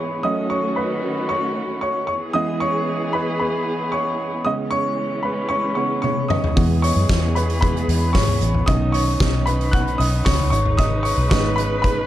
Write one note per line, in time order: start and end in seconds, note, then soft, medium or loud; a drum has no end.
0.00 0.22 E3 medium
0.00 0.25 E3 medium
0.00 0.26 G#3 soft
0.00 0.22 B3 medium
0.00 0.25 B3 medium
0.00 0.22 G#4 medium
0.00 0.26 B4 medium
0.00 0.26 C#5 medium
0.00 0.25 D#5 medium
0.00 0.26 B5 medium
0.00 0.25 C#6 medium
0.00 0.23 D#6 loud
0.23 2.06 D#3 medium
0.23 0.99 F#3 medium
0.23 2.06 A3 medium
0.23 0.99 A3 medium
0.23 2.06 C#4 medium
0.23 0.99 C#4 medium
0.23 2.06 F#4 medium
0.23 0.49 D#5 medium
0.23 0.51 D#6 loud
0.50 0.75 C#5 medium
0.50 0.77 C#6 medium
0.76 1.26 B4 medium
0.76 1.31 B5 medium
1.29 1.79 C#5 medium
1.29 1.80 C#6 medium
1.81 2.07 C#5 medium
1.81 2.06 C#6 medium
2.07 4.43 E3 medium
2.07 4.43 B3 medium
2.07 4.43 G#4 medium
2.07 2.14 C#5 medium
2.07 2.13 C#6 medium
2.33 2.69 E3 medium
2.33 2.70 G#3 medium
2.33 2.70 B3 medium
2.33 2.41 D#5 medium
2.33 2.40 D#6 loud
2.60 3.11 C#5 medium
2.60 3.15 C#6 loud
3.13 3.39 B4 medium
3.13 3.38 B5 medium
3.40 3.90 B4 medium
3.40 3.94 B5 medium
3.92 4.43 C#5 medium
3.92 4.47 C#6 medium
4.45 5.75 C#3 medium
4.45 6.54 E3 medium
4.45 6.55 G#3 medium
4.45 5.75 G#3 medium
4.45 5.75 B3 medium
4.45 6.55 C#4 medium
4.45 4.52 D#5 medium
4.45 4.51 D#6 loud
4.71 5.21 C#5 medium
4.71 5.26 C#6 loud
5.23 5.49 B4 medium
5.23 5.51 B5 medium
5.49 5.76 C#5 medium
5.49 5.74 C#6 loud
5.75 6.01 C#3 soft
5.75 6.01 G#3 soft
5.75 6.01 B3 medium
5.75 5.83 C#5 medium
5.75 5.81 C#6 medium
6.02 6.29 C#5 medium
6.02 6.30 C#6 medium
6.02 high tom medium
6.28 6.79 D#5 medium
6.28 6.78 D#6 medium
6.28 mid tom loud
6.44 floor tom medium
6.55 6.94 E2 medium
6.55 6.91 E3 medium
6.55 8.66 E3 medium
6.55 6.91 G#3 soft
6.55 6.92 B3 medium
6.55 10.49 B3 medium
6.55 8.66 G#4 medium
6.55 kick loud
6.55 open hi-hat medium
6.82 7.33 C#5 medium
6.82 7.37 C#6 loud
6.82 hi-hat pedal medium
6.82 open hi-hat medium
6.96 7.08 F#2 medium
7.09 7.85 E2 loud
7.09 kick loud
7.09 snare loud
7.09 hi-hat pedal medium
7.09 open hi-hat medium
7.35 7.43 B4 medium
7.35 7.41 B5 medium
7.35 hi-hat pedal medium
7.35 open hi-hat medium
7.50 open hi-hat medium
7.61 7.86 E3 soft
7.61 7.86 G#3 soft
7.61 7.86 B3 medium
7.61 8.12 B4 medium
7.61 8.16 B5 loud
7.61 kick loud
7.61 hi-hat pedal medium
7.61 open hi-hat medium
7.76 hi-hat pedal medium
7.88 8.13 E2 loud
7.88 hi-hat pedal medium
7.88 open hi-hat medium
8.13 8.39 G#2 medium
8.13 8.64 C#5 medium
8.13 8.68 C#6 loud
8.13 kick loud
8.13 snare loud
8.13 hi-hat pedal medium
8.13 open hi-hat loud
8.28 floor tom medium
8.41 8.66 A1 medium
8.41 hi-hat pedal medium
8.41 open hi-hat medium
8.54 floor tom medium
8.66 9.17 B1 medium
8.66 9.43 D#3 medium
8.66 9.43 B3 medium
8.66 10.50 C#4 medium
8.66 9.43 C#4 medium
8.66 12.07 D#4 medium
8.66 8.93 D#5 medium
8.66 8.92 D#6 loud
8.66 kick loud
8.66 hi-hat pedal medium
8.66 open hi-hat medium
8.92 9.43 C#5 medium
8.92 9.48 C#6 medium
8.92 hi-hat pedal medium
8.92 open hi-hat medium
9.20 9.96 B1 medium
9.20 kick loud
9.20 snare loud
9.20 hi-hat pedal medium
9.20 open hi-hat loud
9.46 9.72 B4 medium
9.46 9.74 B5 loud
9.46 hi-hat pedal medium
9.46 open hi-hat medium
9.61 open hi-hat medium
9.71 9.98 F#5 medium
9.71 10.00 F#6 loud
9.71 kick loud
9.71 hi-hat pedal medium
9.71 open hi-hat medium
9.87 hi-hat pedal medium
9.98 10.24 B1 loud
9.98 10.24 D#5 medium
9.98 10.26 D#6 loud
9.98 hi-hat pedal medium
9.98 open hi-hat medium
10.25 10.50 C#2 medium
10.25 10.51 C#5 medium
10.25 10.49 C#6 loud
10.25 kick loud
10.25 snare loud
10.25 hi-hat pedal medium
10.25 open hi-hat loud
10.39 floor tom medium
10.50 11.14 G#1 loud
10.50 12.07 G#3 medium
10.50 12.07 B4 medium
10.50 10.77 C#5 medium
10.50 10.76 C#6 loud
10.50 hi-hat pedal medium
10.50 open hi-hat medium
10.66 floor tom medium
10.77 11.04 D#5 medium
10.77 11.03 D#6 loud
10.77 kick loud
10.77 hi-hat pedal medium
10.77 open hi-hat medium
11.03 11.30 C#5 medium
11.03 11.28 C#6 loud
11.03 hi-hat pedal medium
11.03 open hi-hat medium
11.17 11.31 B1 medium
11.29 12.06 G#1 loud
11.29 12.06 G#3 medium
11.29 12.06 B3 medium
11.29 12.07 D#4 medium
11.29 11.56 C#5 medium
11.29 11.58 C#6 medium
11.29 kick loud
11.29 snare loud
11.29 hi-hat pedal medium
11.29 open hi-hat medium
11.56 11.82 B4 medium
11.56 11.80 B5 loud
11.56 hi-hat pedal medium
11.56 open hi-hat medium
11.82 11.90 B4 medium
11.82 11.88 B5 loud
11.82 kick medium
11.82 hi-hat pedal medium
11.82 open hi-hat medium